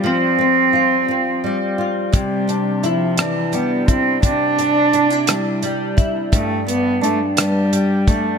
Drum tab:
HH |------|xxxxxx|xxxxxx|xxxxxx|
SD |------|---r--|---r--|---r--|
BD |------|o----o|o----o|o----o|